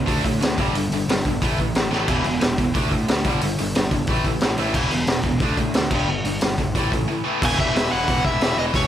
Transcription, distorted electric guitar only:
0.06 D3 A3 D4
0.24 D3 A3
0.41 D3 A3
0.58 G2 D3 G3
0.75 G2 D3
0.93 G2 D3
1.09 G2 D3
1.26 G2 D3
1.42 A2 E3 A3
1.60 A2 E3
1.76 A2 E3
1.91 A2 E3 A3
2.08 E2 B2 E3
2.25 E2 B2
2.41 E2 B2
2.59 E2 B2
2.74 D3 A3 D4
2.92 D3 A3
3.09 D3 A3
3.25 G2 D3 G3
3.43 G2 D3
3.59 G2 D3
3.76 G2 D3
3.92 G2 D3
4.09 A2 E3 A3
4.26 A2 E3
4.43 A2 E3
4.58 A2 E3 A3
4.74 E2 B2 E3
4.91 E2 B2
5.08 E2 B2
5.25 E2 B2
5.42 D3 A3 D4
5.58 D3 A3
5.74 D3 A3
5.92 G2 D3 G3
6.08 G2 D3
6.25 G2 D3
6.42 G2 D3
6.58 G2 D3
6.75 A2 E3 A3
6.92 A2 E3
7.08 A2 E3
7.24 A2 E3 A3
7.42 E2 B2 E3
7.57 E2 B2 E3
7.74 E2 B2 E3
7.92 E2 B2 E3
8.07 E2 B2 E3
8.25 E2 B2 E3
8.41 E2 B2 E3
8.59 E2 B2 E3
8.74 E2 B2 E3

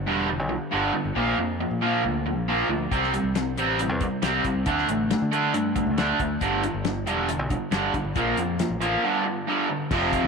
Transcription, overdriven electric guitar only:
0.06 G2 D3 G3
0.27 G2 D3
0.49 G2 D3
0.71 G2 D3 G3
0.94 G2 D3
1.15 A#2 F3 A#3
1.38 A#2 F3
1.61 A#2 F3
1.82 A#2 F3 A#3
2.04 A#2 F3
2.26 A#2 F3
2.48 A#2 F3 A#3
2.70 A#2 F3
2.91 C3 G3 C4
3.13 C3 G3
3.35 C3 G3
3.58 C3 G3 C4
3.80 C3 G3
4.01 C3 G3
4.22 C3 G3 C4
4.45 C3 G3
4.66 D3 A3 D4
4.89 D3 A3
5.11 D3 A3
5.32 D3 A3 D4
5.54 D3 A3
5.76 D3 A3
5.98 D3 A3 D4
6.20 D3 A3
6.41 G2 D3 G3
6.63 G2 D3
6.85 G2 D3
7.06 G2 D3 G3
7.29 G2 D3
7.50 G2 D3
7.71 G2 D3 G3
7.94 G2 D3
8.16 A#2 F3 A#3
8.39 A#2 F3
8.60 A#2 F3
8.81 A#2 F3 A#3
9.04 G2 D3 G3
9.26 G2 D3
9.48 G2 D3 G3
9.70 G2 D3
9.91 F2 C3 F3

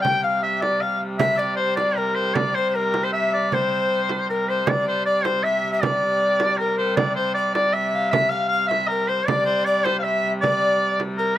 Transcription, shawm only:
0.02 G5
0.23 F5
0.43 E5
0.62 D5
0.81 F5
1.19 E5
1.37 D5
1.56 C5
1.76 D5
1.96 A#4
2.15 C5
2.34 D5
2.54 C5
2.69 C5
2.74 A#4
3.04 C5
3.13 E5
3.34 D5
3.54 C5
4.29 A#4
4.49 C5
4.69 D5
4.87 C5
5.05 D5
5.24 C5
5.44 E5
5.72 E5
5.82 D5
6.57 A#4
6.78 C5
6.96 D5
7.15 C5
7.34 D5
7.54 D5
7.73 E5
8.11 E5
8.30 F5
8.48 F5
8.68 E5
8.87 A#4
9.07 C5
9.26 D5
9.45 C5
9.65 D5
9.84 C5
9.99 E5 F5
10.41 D5
11.17 A#4

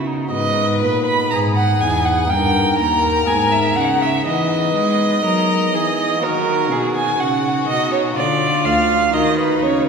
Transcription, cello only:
Already playing: C#3
0.33 G#2
0.82 A#2
1.32 G#2
1.81 E2
2.30 G2
2.79 D#2
3.28 G#2
3.76 C#3
4.26 E3
4.75 G#3
5.24 F#3
5.73 E3
6.22 D#3
6.71 B2
7.19 C#3
7.68 B2
8.17 D3
8.65 D2
9.14 D#3
9.63 C#3

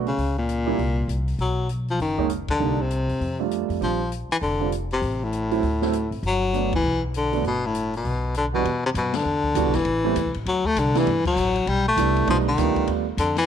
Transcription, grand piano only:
0.66 G3 A#3 D4 E4
2.18 G#3 A#3 C#4 D#4
2.59 G3 A#3 D4 D#4
3.39 G3 A3 D4 F4
3.81 G3 C4 D4 F4
4.60 G3 C4 D4 F4
5.51 F#3 A3 C4 E4
5.82 F#3 A3 C4 E4
6.53 F#3 A3 B3 D4
7.33 F#3 A3 B3 D4
8.53 E2 G3 B3 D4 F#4
9.55 E3 G3 B3 D4 F#4
10.04 G3 A3 B3 C4 E4
10.95 G3 A3 B3 D4 E4
11.97 G3 A3 B3 D4 E4
12.27 G3 A3 B3 D4 D#4
12.58 G3 A3 B3 D4 F4

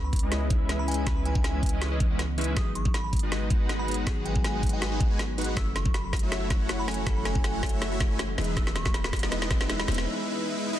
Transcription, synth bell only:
0.04 B5
0.79 B5
0.88 G#5
1.07 B5
1.17 B5
1.26 G#5
1.35 G#5
1.44 G#5
2.57 D#6
2.75 C#6
2.94 B5
3.04 B5
3.79 B5
4.25 G#5
4.44 G#5
4.73 G#5
5.57 E6
5.76 C#6
5.94 B5
6.04 B5
6.79 B5
6.88 G#5
7.06 B5
7.17 B5
7.25 G#5
7.35 G#5
7.44 G#5
8.57 E6
8.76 C#6
8.94 B5
9.04 B5
9.79 B5

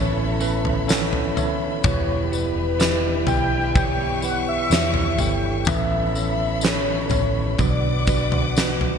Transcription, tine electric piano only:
Already playing: A2 E3 C#4 A4 B4 C#5
0.40 C#4 A4 B4 A5
0.87 C#4 A4 C#5 F#5
1.35 C#4 A4 C#5 E5
1.84 B2 E4 G4 B4
2.32 E4 G4 D5
2.79 E4 G4 D5
3.27 E4 G4 B4
3.74 E4 G4 C#5
4.23 E4 G4 B4
4.71 E4 G4 C#5
5.19 E4 G4 A4
5.67 A2 E3 C#4 A4 B4
6.15 C#4 A4 C#5
6.63 C#4 A4 C#5
7.10 C#4 A4 C#5
7.59 B2 F#3 D4 F#4 B4
8.07 D4 F#4 B4
8.57 D4 F#4 B4

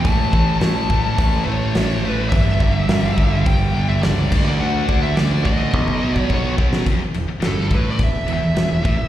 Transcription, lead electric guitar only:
0.01 A5
0.58 A5
1.16 A5
1.44 C#5
2.08 B4
2.29 E5
3.46 G5
3.88 E5
4.03 D5
4.45 D5
4.60 F#5
5.03 E5
5.16 D5
5.44 D#5
6.20 C#5
7.46 A4
7.75 B4
7.90 D5
8.04 E5
8.33 E5

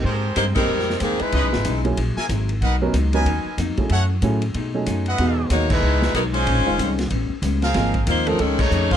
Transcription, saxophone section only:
0.37 A#3 D#4 G4 C5
0.55 G3 C4 D#4 A#4
1.01 D#3 A#3 C4 G#4
1.21 G#3 D#4 E4 B4
5.51 A#3 D#4 F#4 C#5
5.70 G#3 D#4 E4 B4
6.14 F#3 B3 D#4 A#4
6.33 G#3 C#4 F4 C5
8.08 A#3 D#4 F4 C5
8.28 F3 C4 D#4 A#4
8.40 D#3 G#3 C#4 A4
8.60 A3 D#4 G#4 C#5
8.92 A#3 F4 G#4 C5

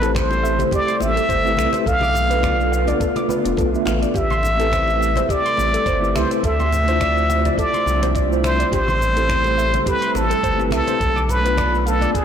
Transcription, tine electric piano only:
0.00 A3 C4 E4
0.04 G4 C5
1.43 A3 C4 E4 G4 B4
2.27 A3 B3 D4
2.33 F4 B4
3.27 A3 B3 D4 F4
3.32 D5
3.44 A3 B3 D4 F4 B4
3.72 A3 B3 D4 F4 E5
4.55 A3 C4 E4
4.61 G4 B4
6.00 A3 C4 E4 G4 B4
6.84 A3 D4
6.88 E4 F4 C5
8.29 A3 D4 E4 F4 C5
9.13 A3 C4 E4
9.19 G4 C5
10.57 A3 C4 E4 G4
10.61 B4
11.41 A3 B3
11.45 D4 F4 B4

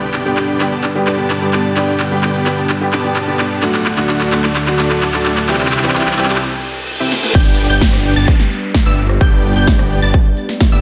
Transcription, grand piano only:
0.25 D3 G3 B3 G4
0.60 D3 G3 B3 G4
0.95 D3 G3 B3 G4
1.18 D3 G3 B3 G4
1.41 D3 G3 B3 G4
1.76 D3 G3 B3 G4
2.11 D3 G3 B3 G4
2.46 D3 G3 B3 G4
2.80 D3 G3 B3 G4
3.04 D3 G3 B3 G4
3.27 D3 G3 B3 G4
3.62 D3 F#3 A3 F#4
3.97 D3 F#3 A3 F#4
4.32 D3 F#3 A3 F#4
4.67 D3 F#3 A3 F#4
4.90 D3 F#3 A3 F#4
5.13 D3 F#3 A3 F#4
5.48 E3 G3 C4 G4
5.83 E3 G3 C4 G4
6.18 E3 G3 C4 G4

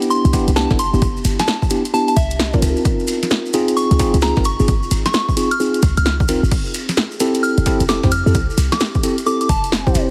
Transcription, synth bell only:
0.10 C6
0.56 A5
0.79 C6
1.40 A5
1.94 A5
2.08 A5
2.16 E5
3.77 C#6
4.23 A#5
4.45 C#6
5.06 C#6
5.14 C#6
5.51 F6
5.97 F6
6.06 F6
7.43 F6
7.89 D6
8.12 F6
8.72 D6
9.26 D6
9.41 D6
9.49 A5

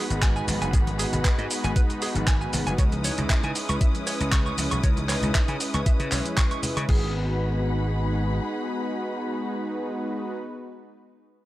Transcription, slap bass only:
0.10 G#1
0.48 G#1
0.61 F#1
0.73 G#1
1.12 G#1
1.38 G#2
1.64 G#1
2.15 G#1
2.53 G#1
2.67 F#1
2.78 C#2
3.18 C#2
3.44 C#3
3.69 C#2
4.20 C#2
4.58 C#2
4.72 B1
4.84 C#2
5.23 C#2
5.48 C#3
5.74 C#2
6.00 C#3
6.12 B1
6.77 C#3
6.89 G#1

